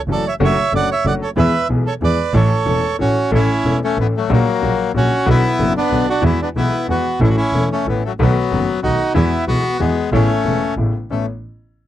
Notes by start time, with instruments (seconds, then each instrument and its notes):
0.08 double bass F#1, grand piano F#2 E3 F#3 A3 C#4 F#4, bandoneon A4
0.13 bandoneon D5
0.27 bandoneon C#5 E5
0.40 double bass F#1, grand piano F#2 D3 F#3 A3 C#4 F#4
0.44 bandoneon C#5 E5
0.73 double bass F#1, grand piano F#2 D3 F#3 A3 C#4 F#4, bandoneon D5
0.77 bandoneon F#5
0.91 bandoneon C#5 E5
1.05 double bass F#1, grand piano F#2 D3 F#3 A3 C#4 F#4, bandoneon D5 F#5
1.22 bandoneon A4 C#5
1.36 double bass E2, grand piano E2 E3 G#3 B3 G#4, bandoneon B4 E5
1.69 double bass B1, grand piano B1 B2 E3 G#3 B3 G#4
1.86 bandoneon A4 C#5
2.01 double bass E2, grand piano E2 E3 G#3 B3 G#4, bandoneon B4 D5
2.33 double bass A1, grand piano A1 A2 E3 A3 C#4 A4, bandoneon A4 C#5
2.66 double bass E1, grand piano E1 E2 E3 A3 C#4 A4
2.99 grand piano A1 A2 E3 A3 C#4 A4, double bass A1, bandoneon C#4 F#4
3.31 grand piano A1 A2 E3 A3 C#4 A4, double bass A1, bandoneon C#4 E4
3.65 double bass E1, grand piano E1 E2 E3 A3 C#4 A4
3.84 bandoneon A3 C#4
3.98 double bass A1, grand piano A1 A2 E3 A3 C#4 A4, bandoneon E3 B3
4.17 bandoneon F#3 A3
4.29 double bass A#1, grand piano A#1 A#2 C#3 F#3 A#3 F#4, bandoneon F#3 A#3
4.62 double bass A#1, grand piano A#1 A#2 C#3 F#3 A#3 F#4
4.94 grand piano A#1 A#2 C#3 F#3 A#3 F#4, double bass A#1, bandoneon C#4 F#4
5.26 grand piano B1 B2 D3 F#3 B3 F#4, double bass B1, bandoneon B3
5.30 bandoneon E4
5.59 grand piano F#1 F#2 D3 F#3 B3 F#4, double bass F#1
5.77 bandoneon B3 D4
5.90 double bass B1, grand piano B1 B2 D3 F#3 B3 F#4
6.10 bandoneon D4 F#4
6.22 grand piano E2 E3 G#3 B3 F#4, double bass E2, bandoneon E4
6.26 bandoneon B3
6.42 bandoneon B3 D4
6.56 double bass B1, grand piano B1 B2 E3 G#3 B3 F#4, bandoneon B3 E4
6.88 double bass E2, grand piano E2 E3 G#3 B3 F#4, bandoneon B3 F#4
7.20 double bass A1, grand piano A1 A2 E3 A3 C#4 A4, bandoneon E4
7.25 bandoneon C#4
7.30 bandoneon F#4
7.37 bandoneon C#4 E4
7.53 double bass E1, grand piano E1 E2 E3 A3 C#4 A4
7.72 bandoneon A3 C#4
7.86 double bass A1, grand piano A1 A2 E3 A3 C#4 A4, bandoneon B3
7.90 bandoneon E3
8.05 bandoneon F#3 A3
8.19 grand piano B1 B2 D#3 A3 B3 F#4, double bass B1, bandoneon F#3 B3
8.51 double bass F#1, grand piano F#1 F#2 D#3 A3 B3 F#4
8.83 grand piano B1 B2 D#3 A3 B3 F#4, double bass B1, bandoneon D#4 F#4
9.14 grand piano E2 E3 G#3 B3 F#4, double bass E2, bandoneon B3 E4
9.47 double bass B1, grand piano B1 B2 E3 G#3 B3 F#4, bandoneon B3 F#4
9.79 grand piano E2 E3 G#3 B3 F#4, double bass E2, bandoneon G#3 B3
10.12 double bass A1, grand piano A1 A2 C#3 A3 B3 E4, bandoneon A3 C#4
10.45 grand piano E1 E2 C#3 A3 B3 E4, double bass E1
10.77 double bass A1, grand piano A1 A2 C#3 A3 B3 E4
11.10 double bass A1, grand piano A1 A3 B3 C#4, bandoneon A3